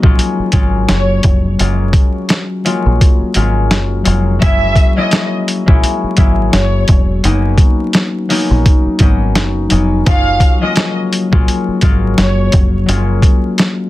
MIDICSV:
0, 0, Header, 1, 6, 480
1, 0, Start_track
1, 0, Key_signature, 6, "major"
1, 0, Tempo, 705882
1, 1085, Time_signature, 4, 2, 24, 8
1, 9451, End_track
2, 0, Start_track
2, 0, Title_t, "Violin section"
2, 0, Program_c, 0, 48
2, 602, Note_on_c, 0, 73, 82
2, 819, Note_off_c, 0, 73, 0
2, 3001, Note_on_c, 0, 76, 120
2, 3357, Note_off_c, 0, 76, 0
2, 3386, Note_on_c, 0, 75, 82
2, 3600, Note_off_c, 0, 75, 0
2, 4440, Note_on_c, 0, 73, 83
2, 4658, Note_off_c, 0, 73, 0
2, 6847, Note_on_c, 0, 77, 115
2, 7200, Note_off_c, 0, 77, 0
2, 7224, Note_on_c, 0, 75, 79
2, 7439, Note_off_c, 0, 75, 0
2, 8283, Note_on_c, 0, 73, 83
2, 8499, Note_off_c, 0, 73, 0
2, 9451, End_track
3, 0, Start_track
3, 0, Title_t, "Harp"
3, 0, Program_c, 1, 46
3, 16, Note_on_c, 1, 54, 89
3, 20, Note_on_c, 1, 58, 81
3, 22, Note_on_c, 1, 56, 77
3, 25, Note_on_c, 1, 61, 80
3, 25, Note_on_c, 1, 65, 98
3, 340, Note_off_c, 1, 58, 0
3, 341, Note_off_c, 1, 61, 0
3, 341, Note_off_c, 1, 65, 0
3, 352, Note_off_c, 1, 54, 0
3, 355, Note_off_c, 1, 56, 0
3, 359, Note_on_c, 1, 54, 89
3, 362, Note_on_c, 1, 58, 83
3, 365, Note_on_c, 1, 56, 78
3, 368, Note_on_c, 1, 65, 107
3, 369, Note_on_c, 1, 61, 86
3, 811, Note_off_c, 1, 58, 0
3, 813, Note_off_c, 1, 61, 0
3, 813, Note_off_c, 1, 65, 0
3, 1073, Note_off_c, 1, 54, 0
3, 1075, Note_off_c, 1, 56, 0
3, 1080, Note_on_c, 1, 54, 89
3, 1082, Note_on_c, 1, 58, 78
3, 1085, Note_on_c, 1, 56, 83
3, 1088, Note_on_c, 1, 61, 82
3, 1088, Note_on_c, 1, 65, 98
3, 1793, Note_off_c, 1, 54, 0
3, 1794, Note_off_c, 1, 56, 0
3, 1800, Note_off_c, 1, 58, 0
3, 1800, Note_on_c, 1, 54, 93
3, 1802, Note_on_c, 1, 58, 82
3, 1804, Note_on_c, 1, 56, 81
3, 1805, Note_off_c, 1, 65, 0
3, 1806, Note_off_c, 1, 61, 0
3, 1808, Note_on_c, 1, 65, 102
3, 1809, Note_on_c, 1, 61, 81
3, 2251, Note_off_c, 1, 58, 0
3, 2253, Note_off_c, 1, 61, 0
3, 2253, Note_off_c, 1, 65, 0
3, 2272, Note_off_c, 1, 54, 0
3, 2274, Note_off_c, 1, 56, 0
3, 2279, Note_on_c, 1, 54, 93
3, 2282, Note_on_c, 1, 58, 87
3, 2284, Note_on_c, 1, 56, 90
3, 2287, Note_on_c, 1, 65, 105
3, 2288, Note_on_c, 1, 61, 88
3, 2731, Note_off_c, 1, 58, 0
3, 2732, Note_off_c, 1, 61, 0
3, 2733, Note_off_c, 1, 65, 0
3, 2741, Note_off_c, 1, 54, 0
3, 2743, Note_off_c, 1, 56, 0
3, 2748, Note_on_c, 1, 54, 75
3, 2750, Note_on_c, 1, 58, 67
3, 2752, Note_on_c, 1, 56, 69
3, 2756, Note_on_c, 1, 61, 67
3, 2756, Note_on_c, 1, 65, 82
3, 2982, Note_off_c, 1, 58, 0
3, 2982, Note_off_c, 1, 61, 0
3, 2983, Note_off_c, 1, 54, 0
3, 2984, Note_off_c, 1, 65, 0
3, 2985, Note_on_c, 1, 54, 82
3, 2997, Note_off_c, 1, 56, 0
3, 3005, Note_on_c, 1, 56, 88
3, 3007, Note_on_c, 1, 61, 82
3, 3011, Note_on_c, 1, 64, 101
3, 3023, Note_on_c, 1, 58, 86
3, 3349, Note_off_c, 1, 58, 0
3, 3350, Note_off_c, 1, 61, 0
3, 3351, Note_off_c, 1, 64, 0
3, 3368, Note_off_c, 1, 54, 0
3, 3369, Note_off_c, 1, 56, 0
3, 3374, Note_on_c, 1, 54, 94
3, 3377, Note_on_c, 1, 58, 86
3, 3379, Note_on_c, 1, 56, 88
3, 3383, Note_on_c, 1, 61, 87
3, 3383, Note_on_c, 1, 64, 104
3, 3816, Note_off_c, 1, 58, 0
3, 3817, Note_off_c, 1, 61, 0
3, 3818, Note_off_c, 1, 64, 0
3, 3843, Note_off_c, 1, 54, 0
3, 3845, Note_off_c, 1, 56, 0
3, 3849, Note_on_c, 1, 54, 90
3, 3852, Note_on_c, 1, 58, 79
3, 3855, Note_on_c, 1, 56, 76
3, 3859, Note_on_c, 1, 64, 101
3, 3860, Note_on_c, 1, 61, 80
3, 4176, Note_off_c, 1, 58, 0
3, 4178, Note_off_c, 1, 61, 0
3, 4178, Note_off_c, 1, 64, 0
3, 4188, Note_off_c, 1, 54, 0
3, 4191, Note_off_c, 1, 56, 0
3, 4194, Note_on_c, 1, 54, 91
3, 4199, Note_on_c, 1, 58, 79
3, 4200, Note_on_c, 1, 56, 81
3, 4203, Note_on_c, 1, 61, 83
3, 4204, Note_on_c, 1, 64, 105
3, 4649, Note_off_c, 1, 58, 0
3, 4650, Note_off_c, 1, 61, 0
3, 4651, Note_off_c, 1, 64, 0
3, 4913, Note_off_c, 1, 54, 0
3, 4919, Note_on_c, 1, 54, 93
3, 4923, Note_on_c, 1, 59, 89
3, 4926, Note_on_c, 1, 58, 91
3, 4928, Note_on_c, 1, 61, 86
3, 4928, Note_on_c, 1, 63, 99
3, 4958, Note_off_c, 1, 56, 0
3, 5629, Note_off_c, 1, 54, 0
3, 5635, Note_on_c, 1, 54, 86
3, 5636, Note_off_c, 1, 59, 0
3, 5637, Note_off_c, 1, 58, 0
3, 5638, Note_on_c, 1, 59, 81
3, 5640, Note_on_c, 1, 58, 88
3, 5642, Note_off_c, 1, 61, 0
3, 5642, Note_off_c, 1, 63, 0
3, 5644, Note_on_c, 1, 61, 83
3, 5645, Note_on_c, 1, 63, 108
3, 6089, Note_off_c, 1, 58, 0
3, 6089, Note_off_c, 1, 59, 0
3, 6090, Note_off_c, 1, 61, 0
3, 6092, Note_off_c, 1, 63, 0
3, 6116, Note_off_c, 1, 54, 0
3, 6122, Note_on_c, 1, 54, 94
3, 6127, Note_on_c, 1, 59, 81
3, 6129, Note_on_c, 1, 58, 80
3, 6131, Note_on_c, 1, 63, 108
3, 6132, Note_on_c, 1, 61, 82
3, 6572, Note_off_c, 1, 58, 0
3, 6573, Note_off_c, 1, 59, 0
3, 6574, Note_off_c, 1, 61, 0
3, 6575, Note_off_c, 1, 63, 0
3, 6585, Note_off_c, 1, 54, 0
3, 6591, Note_on_c, 1, 54, 72
3, 6596, Note_on_c, 1, 59, 68
3, 6598, Note_on_c, 1, 58, 71
3, 6601, Note_on_c, 1, 61, 72
3, 6602, Note_on_c, 1, 63, 88
3, 6823, Note_off_c, 1, 58, 0
3, 6824, Note_off_c, 1, 59, 0
3, 6825, Note_off_c, 1, 61, 0
3, 6827, Note_off_c, 1, 63, 0
3, 6833, Note_off_c, 1, 54, 0
3, 6841, Note_on_c, 1, 54, 95
3, 6842, Note_on_c, 1, 56, 88
3, 6846, Note_on_c, 1, 58, 84
3, 6846, Note_on_c, 1, 61, 85
3, 6850, Note_on_c, 1, 65, 103
3, 7188, Note_off_c, 1, 58, 0
3, 7190, Note_off_c, 1, 61, 0
3, 7191, Note_off_c, 1, 65, 0
3, 7211, Note_off_c, 1, 54, 0
3, 7212, Note_off_c, 1, 56, 0
3, 7217, Note_on_c, 1, 54, 91
3, 7221, Note_on_c, 1, 58, 83
3, 7222, Note_on_c, 1, 56, 83
3, 7225, Note_on_c, 1, 61, 89
3, 7226, Note_on_c, 1, 65, 112
3, 7658, Note_off_c, 1, 58, 0
3, 7659, Note_off_c, 1, 61, 0
3, 7660, Note_off_c, 1, 65, 0
3, 7688, Note_off_c, 1, 54, 0
3, 7690, Note_off_c, 1, 56, 0
3, 7694, Note_on_c, 1, 54, 87
3, 7699, Note_on_c, 1, 58, 81
3, 7700, Note_on_c, 1, 56, 81
3, 7703, Note_on_c, 1, 61, 76
3, 7704, Note_on_c, 1, 65, 98
3, 8019, Note_off_c, 1, 58, 0
3, 8020, Note_off_c, 1, 61, 0
3, 8021, Note_off_c, 1, 65, 0
3, 8031, Note_off_c, 1, 54, 0
3, 8033, Note_off_c, 1, 56, 0
3, 8037, Note_on_c, 1, 54, 88
3, 8041, Note_on_c, 1, 58, 85
3, 8043, Note_on_c, 1, 56, 80
3, 8045, Note_on_c, 1, 61, 89
3, 8046, Note_on_c, 1, 65, 112
3, 8490, Note_off_c, 1, 58, 0
3, 8491, Note_off_c, 1, 61, 0
3, 8492, Note_off_c, 1, 65, 0
3, 8742, Note_off_c, 1, 54, 0
3, 8745, Note_on_c, 1, 54, 89
3, 8751, Note_off_c, 1, 56, 0
3, 8759, Note_on_c, 1, 56, 83
3, 8761, Note_on_c, 1, 61, 85
3, 8766, Note_on_c, 1, 65, 102
3, 8774, Note_on_c, 1, 58, 78
3, 9451, Note_off_c, 1, 54, 0
3, 9451, Note_off_c, 1, 56, 0
3, 9451, Note_off_c, 1, 58, 0
3, 9451, Note_off_c, 1, 61, 0
3, 9451, Note_off_c, 1, 65, 0
3, 9451, End_track
4, 0, Start_track
4, 0, Title_t, "Fingered electric bass"
4, 0, Program_c, 2, 33
4, 25, Note_on_c, 2, 34, 90
4, 116, Note_off_c, 2, 34, 0
4, 364, Note_on_c, 2, 32, 94
4, 580, Note_off_c, 2, 32, 0
4, 610, Note_on_c, 2, 30, 96
4, 823, Note_off_c, 2, 30, 0
4, 845, Note_on_c, 2, 29, 94
4, 1061, Note_off_c, 2, 29, 0
4, 1088, Note_on_c, 2, 30, 101
4, 1302, Note_off_c, 2, 30, 0
4, 1945, Note_on_c, 2, 34, 85
4, 2036, Note_off_c, 2, 34, 0
4, 2286, Note_on_c, 2, 32, 100
4, 2527, Note_off_c, 2, 32, 0
4, 2527, Note_on_c, 2, 30, 103
4, 2742, Note_off_c, 2, 30, 0
4, 2767, Note_on_c, 2, 29, 98
4, 2982, Note_off_c, 2, 29, 0
4, 3007, Note_on_c, 2, 30, 104
4, 3222, Note_off_c, 2, 30, 0
4, 3863, Note_on_c, 2, 34, 99
4, 3955, Note_off_c, 2, 34, 0
4, 4202, Note_on_c, 2, 32, 91
4, 4419, Note_off_c, 2, 32, 0
4, 4447, Note_on_c, 2, 30, 97
4, 4662, Note_off_c, 2, 30, 0
4, 4684, Note_on_c, 2, 28, 97
4, 4900, Note_off_c, 2, 28, 0
4, 4927, Note_on_c, 2, 30, 104
4, 5142, Note_off_c, 2, 30, 0
4, 5785, Note_on_c, 2, 34, 86
4, 5876, Note_off_c, 2, 34, 0
4, 6122, Note_on_c, 2, 32, 85
4, 6368, Note_off_c, 2, 32, 0
4, 6368, Note_on_c, 2, 30, 92
4, 6582, Note_off_c, 2, 30, 0
4, 6607, Note_on_c, 2, 29, 87
4, 6822, Note_off_c, 2, 29, 0
4, 6846, Note_on_c, 2, 30, 96
4, 7061, Note_off_c, 2, 30, 0
4, 7704, Note_on_c, 2, 34, 91
4, 7795, Note_off_c, 2, 34, 0
4, 8042, Note_on_c, 2, 32, 94
4, 8259, Note_off_c, 2, 32, 0
4, 8287, Note_on_c, 2, 30, 101
4, 8502, Note_off_c, 2, 30, 0
4, 8524, Note_on_c, 2, 29, 94
4, 8740, Note_off_c, 2, 29, 0
4, 8765, Note_on_c, 2, 30, 103
4, 8981, Note_off_c, 2, 30, 0
4, 9451, End_track
5, 0, Start_track
5, 0, Title_t, "Muted fingered electric bass strokes"
5, 267, Note_on_c, 9, 29, 46
5, 335, Note_off_c, 9, 29, 0
5, 2184, Note_on_c, 9, 29, 46
5, 2252, Note_off_c, 9, 29, 0
5, 4104, Note_on_c, 9, 29, 46
5, 4172, Note_off_c, 9, 29, 0
5, 6025, Note_on_c, 9, 29, 47
5, 6093, Note_off_c, 9, 29, 0
5, 7943, Note_on_c, 9, 29, 46
5, 8011, Note_off_c, 9, 29, 0
5, 9451, End_track
6, 0, Start_track
6, 0, Title_t, "Drums"
6, 24, Note_on_c, 9, 36, 99
6, 92, Note_off_c, 9, 36, 0
6, 129, Note_on_c, 9, 42, 96
6, 197, Note_off_c, 9, 42, 0
6, 353, Note_on_c, 9, 42, 71
6, 362, Note_on_c, 9, 36, 84
6, 421, Note_off_c, 9, 42, 0
6, 430, Note_off_c, 9, 36, 0
6, 602, Note_on_c, 9, 38, 116
6, 602, Note_on_c, 9, 42, 91
6, 670, Note_off_c, 9, 38, 0
6, 670, Note_off_c, 9, 42, 0
6, 837, Note_on_c, 9, 42, 95
6, 844, Note_on_c, 9, 36, 98
6, 905, Note_off_c, 9, 42, 0
6, 912, Note_off_c, 9, 36, 0
6, 1084, Note_on_c, 9, 42, 93
6, 1152, Note_off_c, 9, 42, 0
6, 1313, Note_on_c, 9, 36, 103
6, 1317, Note_on_c, 9, 42, 75
6, 1381, Note_off_c, 9, 36, 0
6, 1385, Note_off_c, 9, 42, 0
6, 1556, Note_on_c, 9, 42, 89
6, 1566, Note_on_c, 9, 38, 121
6, 1624, Note_off_c, 9, 42, 0
6, 1634, Note_off_c, 9, 38, 0
6, 1807, Note_on_c, 9, 42, 76
6, 1875, Note_off_c, 9, 42, 0
6, 2048, Note_on_c, 9, 36, 98
6, 2048, Note_on_c, 9, 42, 95
6, 2116, Note_off_c, 9, 36, 0
6, 2116, Note_off_c, 9, 42, 0
6, 2273, Note_on_c, 9, 42, 71
6, 2341, Note_off_c, 9, 42, 0
6, 2522, Note_on_c, 9, 38, 110
6, 2522, Note_on_c, 9, 42, 94
6, 2590, Note_off_c, 9, 38, 0
6, 2590, Note_off_c, 9, 42, 0
6, 2758, Note_on_c, 9, 42, 94
6, 2826, Note_off_c, 9, 42, 0
6, 3004, Note_on_c, 9, 42, 91
6, 3005, Note_on_c, 9, 36, 110
6, 3072, Note_off_c, 9, 42, 0
6, 3073, Note_off_c, 9, 36, 0
6, 3233, Note_on_c, 9, 36, 100
6, 3238, Note_on_c, 9, 42, 74
6, 3301, Note_off_c, 9, 36, 0
6, 3306, Note_off_c, 9, 42, 0
6, 3477, Note_on_c, 9, 42, 86
6, 3486, Note_on_c, 9, 38, 118
6, 3545, Note_off_c, 9, 42, 0
6, 3554, Note_off_c, 9, 38, 0
6, 3727, Note_on_c, 9, 42, 76
6, 3795, Note_off_c, 9, 42, 0
6, 3862, Note_on_c, 9, 36, 97
6, 3930, Note_off_c, 9, 36, 0
6, 3968, Note_on_c, 9, 42, 94
6, 4036, Note_off_c, 9, 42, 0
6, 4193, Note_on_c, 9, 42, 71
6, 4201, Note_on_c, 9, 36, 83
6, 4261, Note_off_c, 9, 42, 0
6, 4269, Note_off_c, 9, 36, 0
6, 4440, Note_on_c, 9, 38, 113
6, 4440, Note_on_c, 9, 42, 95
6, 4508, Note_off_c, 9, 38, 0
6, 4508, Note_off_c, 9, 42, 0
6, 4676, Note_on_c, 9, 42, 92
6, 4683, Note_on_c, 9, 36, 102
6, 4744, Note_off_c, 9, 42, 0
6, 4751, Note_off_c, 9, 36, 0
6, 4923, Note_on_c, 9, 42, 90
6, 4991, Note_off_c, 9, 42, 0
6, 5152, Note_on_c, 9, 36, 99
6, 5156, Note_on_c, 9, 42, 77
6, 5220, Note_off_c, 9, 36, 0
6, 5224, Note_off_c, 9, 42, 0
6, 5394, Note_on_c, 9, 42, 85
6, 5403, Note_on_c, 9, 38, 119
6, 5462, Note_off_c, 9, 42, 0
6, 5471, Note_off_c, 9, 38, 0
6, 5644, Note_on_c, 9, 46, 53
6, 5712, Note_off_c, 9, 46, 0
6, 5887, Note_on_c, 9, 36, 99
6, 5887, Note_on_c, 9, 42, 96
6, 5955, Note_off_c, 9, 36, 0
6, 5955, Note_off_c, 9, 42, 0
6, 6112, Note_on_c, 9, 42, 68
6, 6121, Note_on_c, 9, 36, 83
6, 6180, Note_off_c, 9, 42, 0
6, 6189, Note_off_c, 9, 36, 0
6, 6361, Note_on_c, 9, 42, 96
6, 6362, Note_on_c, 9, 38, 113
6, 6429, Note_off_c, 9, 42, 0
6, 6430, Note_off_c, 9, 38, 0
6, 6597, Note_on_c, 9, 42, 93
6, 6665, Note_off_c, 9, 42, 0
6, 6843, Note_on_c, 9, 42, 91
6, 6845, Note_on_c, 9, 36, 108
6, 6911, Note_off_c, 9, 42, 0
6, 6913, Note_off_c, 9, 36, 0
6, 7073, Note_on_c, 9, 36, 98
6, 7076, Note_on_c, 9, 42, 76
6, 7141, Note_off_c, 9, 36, 0
6, 7144, Note_off_c, 9, 42, 0
6, 7314, Note_on_c, 9, 42, 87
6, 7324, Note_on_c, 9, 38, 123
6, 7382, Note_off_c, 9, 42, 0
6, 7392, Note_off_c, 9, 38, 0
6, 7566, Note_on_c, 9, 42, 77
6, 7634, Note_off_c, 9, 42, 0
6, 7702, Note_on_c, 9, 36, 101
6, 7770, Note_off_c, 9, 36, 0
6, 7808, Note_on_c, 9, 42, 94
6, 7876, Note_off_c, 9, 42, 0
6, 8033, Note_on_c, 9, 42, 69
6, 8041, Note_on_c, 9, 36, 83
6, 8101, Note_off_c, 9, 42, 0
6, 8109, Note_off_c, 9, 36, 0
6, 8281, Note_on_c, 9, 38, 115
6, 8281, Note_on_c, 9, 42, 91
6, 8349, Note_off_c, 9, 38, 0
6, 8349, Note_off_c, 9, 42, 0
6, 8516, Note_on_c, 9, 42, 90
6, 8523, Note_on_c, 9, 36, 98
6, 8584, Note_off_c, 9, 42, 0
6, 8591, Note_off_c, 9, 36, 0
6, 8763, Note_on_c, 9, 42, 92
6, 8831, Note_off_c, 9, 42, 0
6, 8993, Note_on_c, 9, 36, 102
6, 8997, Note_on_c, 9, 42, 79
6, 9061, Note_off_c, 9, 36, 0
6, 9065, Note_off_c, 9, 42, 0
6, 9234, Note_on_c, 9, 42, 87
6, 9244, Note_on_c, 9, 38, 122
6, 9302, Note_off_c, 9, 42, 0
6, 9312, Note_off_c, 9, 38, 0
6, 9451, End_track
0, 0, End_of_file